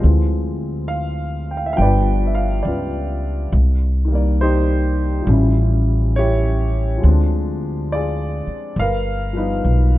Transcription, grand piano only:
0.00 F3 G#3 C4
0.04 E3
0.88 F5
1.51 G5
1.57 F5
1.66 E5
1.73 F3 G3 B3 F5
1.77 D4 G5
1.82 B4 D5
2.27 E5
2.35 F5
2.63 D5
2.67 F4 B4
4.05 D#3 G3
4.12 A#3 D5
4.41 D#4 G4 C5
5.22 F3 G3
5.29 C#4 E4
6.16 E4 G4 C#5
6.98 F3 G#3
7.05 C4 D4
7.92 F4 G#4 D5
8.79 A#4 B4 F5
9.33 F3 G3 B3 B4
9.38 D#4 F4

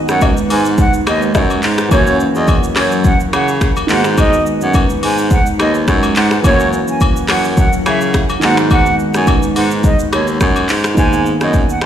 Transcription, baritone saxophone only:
0.09 F#2
0.50 G#2
1.06 D#2
1.35 F#2
1.63 G#2
1.91 F#2
2.35 E2
2.76 F#2
3.33 C#3
3.89 G#2
4.62 F#2
5.03 G#2
5.59 D#2
5.88 F#2
6.16 G#2
6.44 F#2
7.29 F#2
7.86 C#3
8.43 G#2
9.15 F#2
9.56 G#2
10.12 D#2
10.41 F#2
10.69 G#2
10.97 G#2
11.41 F#2
11.82 G#2

